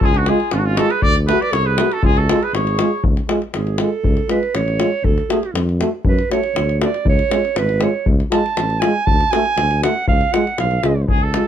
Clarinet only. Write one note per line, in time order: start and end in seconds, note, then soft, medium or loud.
0.03 0.15 F4 medium
0.14 0.28 D4 medium
0.27 0.54 F4 medium
0.52 0.59 C#4 medium
0.57 0.66 D4 medium
0.64 0.76 C#4 medium
0.75 0.89 F#4 medium
0.88 1.01 G#4 medium
1.00 1.14 A4 medium
1.25 1.42 G#4 medium
1.41 1.53 B4 medium
1.51 1.67 A4 medium
1.66 1.94 G#4 medium
1.92 2.03 F#4 medium
2.03 2.19 F4 medium
2.17 2.43 F#4 medium
2.42 2.54 G#4 medium
2.54 3.04 G#4 medium
3.54 3.80 G#4 medium
3.79 4.32 A4 loud
4.31 4.57 B4 medium
4.55 5.06 C#5 medium
5.05 5.30 A4 loud
5.32 5.55 G#4 medium
6.08 6.30 B4 medium
6.32 6.78 C#5 medium
6.85 7.06 D5 medium
7.09 7.60 C#5 loud
7.58 7.85 B4 medium
7.83 8.07 C#5 medium
8.32 8.81 A5 loud
8.80 9.08 G#5 loud
9.06 9.32 A5 loud
9.31 9.82 G#5 loud
9.83 10.06 F#5 medium
10.08 10.34 F5 loud
10.33 10.58 F#5 medium
10.60 11.06 F5 medium